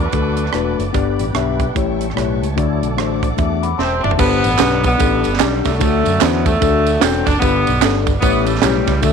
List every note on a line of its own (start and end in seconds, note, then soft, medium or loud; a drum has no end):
0.00 0.92 F#3 medium
0.00 0.92 A3 soft
0.00 0.76 D4 medium
0.00 0.92 D4 medium
0.00 0.75 F#4 medium
0.00 0.92 A4 medium
0.00 0.76 B4 medium
0.00 1.73 D5 medium
0.00 0.93 F#5 medium
0.00 0.93 A5 medium
0.00 1.71 D6 medium
0.12 0.48 D2 medium
0.12 0.43 A3 medium
0.12 0.43 D4 medium
0.12 0.43 F#4 medium
0.12 0.43 A4 medium
0.12 kick loud
0.12 closed hi-hat medium
0.37 closed hi-hat medium
0.46 cross-stick soft
0.53 0.75 E1 medium
0.53 0.83 A3 medium
0.53 0.84 D4 medium
0.53 0.84 F#4 medium
0.53 0.84 B4 medium
0.53 cross-stick medium
0.53 closed hi-hat medium
0.79 0.92 F#1 medium
0.79 closed hi-hat medium
0.93 1.16 G1 medium
0.93 1.56 G2 medium
0.93 1.74 G3 medium
0.93 1.23 B3 loud
0.93 1.74 B3 medium
0.93 1.24 D4 medium
0.93 1.74 D4 medium
0.93 1.24 G4 medium
0.93 1.00 A#4 medium
0.93 1.24 D5 loud
0.93 2.55 G5 medium
0.93 1.74 B5 medium
0.93 kick medium
0.93 closed hi-hat medium
0.99 1.77 B4 medium
1.19 1.33 A1 medium
1.19 closed hi-hat medium
1.33 1.69 B1 medium
1.33 1.64 B3 medium
1.33 1.65 D4 medium
1.33 1.65 G4 medium
1.33 1.65 E5 medium
1.33 cross-stick loud
1.33 closed hi-hat medium
1.60 kick medium
1.60 closed hi-hat medium
1.75 2.10 A1 medium
1.75 2.38 A2 medium
1.75 2.56 G3 medium
1.75 2.05 A3 medium
1.75 2.56 C#4 medium
1.75 2.05 E4 medium
1.75 2.16 E4 medium
1.75 2.06 G4 medium
1.75 2.16 A4 medium
1.75 2.06 C#5 medium
1.75 2.56 E5 medium
1.75 4.17 A5 medium
1.75 2.56 C#6 medium
1.75 kick loud
1.75 closed hi-hat medium
2.01 closed hi-hat medium
2.10 cross-stick soft
2.15 2.42 B1 medium
2.15 2.46 A3 medium
2.15 2.46 E4 medium
2.15 2.46 G4 medium
2.15 2.41 B4 medium
2.15 2.47 C#5 medium
2.15 cross-stick loud
2.15 closed hi-hat medium
2.42 2.55 C#2 medium
2.42 2.81 E4 soft
2.42 2.81 C#5 medium
2.42 closed hi-hat medium
2.56 2.79 D2 medium
2.56 3.19 D3 medium
2.56 4.16 F#3 medium
2.56 2.86 A3 loud
2.56 4.16 A3 medium
2.56 2.87 D4 medium
2.56 3.61 D4 medium
2.56 2.87 F#4 medium
2.56 3.62 A4 medium
2.56 4.17 D5 medium
2.56 2.87 D5 loud
2.56 4.17 F#5 medium
2.56 4.17 D6 medium
2.56 kick medium
2.56 closed hi-hat medium
2.82 2.98 B1 medium
2.82 closed hi-hat medium
2.97 3.32 A1 medium
2.97 3.27 A3 medium
2.97 3.27 D4 medium
2.97 3.28 F#4 medium
2.97 3.28 C5 medium
2.97 cross-stick loud
2.97 closed hi-hat medium
3.23 kick medium
3.23 closed hi-hat medium
3.37 3.73 E2 medium
3.37 3.67 A3 medium
3.37 3.68 D4 medium
3.37 3.68 F#4 medium
3.37 3.64 E5 medium
3.37 kick loud
3.37 closed hi-hat medium
3.63 3.79 C4 soft
3.63 3.79 A4 medium
3.63 3.78 F#5 soft
3.63 3.78 B5 medium
3.63 3.78 D6 medium
3.63 closed hi-hat medium
3.78 4.00 E1 medium
3.78 4.02 C4 medium
3.78 4.02 E5 medium
3.78 4.03 E5 medium
3.78 4.02 A5 medium
3.78 4.03 C6 medium
3.78 snare soft
4.03 4.17 F#1 medium
4.03 4.11 D4 medium
4.03 4.42 F#4 soft
4.03 4.42 C5 soft
4.03 4.42 D5 medium
4.03 4.18 E5 medium
4.03 4.42 A5 medium
4.03 mid tom medium
4.11 floor tom medium
4.18 4.41 G1 loud
4.18 4.80 G2 medium
4.18 4.86 D3 medium
4.18 4.85 G3 medium
4.18 4.81 B3 loud
4.18 4.48 D4 medium
4.18 4.49 G4 medium
4.18 4.49 B4 medium
4.18 kick loud
4.18 crash loud
4.18 tambourine medium
4.44 4.58 A1 medium
4.44 ride medium
4.44 tambourine medium
4.58 4.94 B1 loud
4.58 4.88 D4 medium
4.58 4.89 G4 medium
4.58 4.89 B4 medium
4.58 snare loud
4.58 clap loud
4.58 ride medium
4.58 tambourine loud
4.84 5.62 D3 medium
4.84 5.38 G3 medium
4.84 5.37 B3 loud
4.84 kick medium
4.84 ride medium
4.84 tambourine medium
4.98 5.22 A1 loud
4.98 5.29 D4 medium
4.98 5.29 G4 medium
4.98 5.30 A4 medium
4.98 kick loud
4.98 ride medium
4.98 tambourine medium
5.24 5.39 G1 medium
5.24 ride medium
5.24 tambourine medium
5.34 snare soft
5.39 5.62 B1 loud
5.39 5.65 G3 medium
5.39 5.69 D4 medium
5.39 5.70 G4 medium
5.39 5.70 D5 medium
5.39 snare loud
5.39 clap loud
5.39 ride medium
5.39 tambourine loud
5.65 5.79 C2 medium
5.65 6.42 D3 medium
5.65 6.42 F#3 medium
5.65 6.21 A3 loud
5.65 kick medium
5.65 snare soft
5.65 ride medium
5.65 tambourine medium
5.79 6.02 D2 loud
5.79 6.42 D3 medium
5.79 6.10 D4 medium
5.79 6.10 F#4 medium
5.79 6.10 A4 medium
5.79 kick loud
5.79 ride medium
5.79 tambourine medium
6.06 6.19 F#2 medium
6.06 ride medium
6.06 tambourine medium
6.21 6.56 E2 loud
6.21 6.46 B3 loud
6.21 6.50 D4 medium
6.21 6.51 F#4 medium
6.21 6.51 C5 medium
6.21 snare loud
6.21 clap loud
6.21 ride medium
6.21 tambourine loud
6.45 7.23 D3 medium
6.45 7.23 F#3 medium
6.45 7.01 A3 loud
6.45 kick loud
6.45 ride medium
6.45 tambourine medium
6.60 6.96 D2 loud
6.60 6.90 D4 medium
6.60 6.91 F#4 medium
6.60 6.91 A4 medium
6.60 kick loud
6.60 ride medium
6.60 tambourine medium
6.86 ride medium
6.86 tambourine medium
7.00 7.23 E1 medium
7.00 7.26 C4 loud
7.00 7.30 D4 medium
7.00 7.31 F#4 medium
7.00 7.31 A4 medium
7.00 snare loud
7.00 clap loud
7.00 ride medium
7.00 tambourine loud
7.26 7.40 F#1 loud
7.26 7.41 D4 medium
7.26 kick loud
7.26 snare soft
7.26 ride medium
7.26 tambourine medium
7.40 7.63 G1 loud
7.40 8.03 G2 medium
7.40 8.18 D3 medium
7.40 8.18 G3 medium
7.40 7.94 B3 loud
7.40 7.71 D4 medium
7.40 7.71 G4 medium
7.40 7.71 B4 medium
7.40 kick loud
7.40 ride medium
7.40 tambourine medium
7.67 7.80 B1 loud
7.67 ride medium
7.67 tambourine medium
7.81 8.16 G1 loud
7.81 8.11 D4 medium
7.81 8.12 G4 medium
7.81 8.12 A4 medium
7.81 snare loud
7.81 clap loud
7.81 ride medium
7.81 tambourine loud
8.07 kick loud
8.07 ride medium
8.07 tambourine medium
8.20 8.57 A1 loud
8.20 8.83 A2 medium
8.20 8.61 E3 medium
8.20 8.60 G3 medium
8.20 8.51 A3 medium
8.20 8.44 B3 loud
8.20 8.52 C#4 medium
8.20 8.51 E4 medium
8.20 8.52 G4 medium
8.20 8.52 C#5 medium
8.20 kick loud
8.20 ride medium
8.20 tambourine medium
8.45 8.61 A3 loud
8.45 ride medium
8.45 tambourine medium
8.55 snare soft
8.61 8.84 B1 loud
8.61 9.00 C#3 medium
8.61 9.00 E3 medium
8.61 9.02 G3 medium
8.61 8.92 A3 medium
8.61 8.92 C#4 medium
8.61 8.92 E4 medium
8.61 8.92 G4 medium
8.61 8.92 C#5 medium
8.61 snare loud
8.61 clap loud
8.61 ride medium
8.61 tambourine loud
8.87 9.00 C#2 loud
8.87 kick loud
8.87 snare soft
8.87 ride medium
8.87 tambourine medium
9.02 9.13 D2 loud
9.02 9.13 D3 medium
9.02 9.13 F#3 medium
9.02 9.13 A3 loud
9.02 9.13 D4 medium
9.02 9.13 F#4 medium
9.02 9.13 A4 medium
9.02 kick loud
9.02 ride medium
9.02 tambourine medium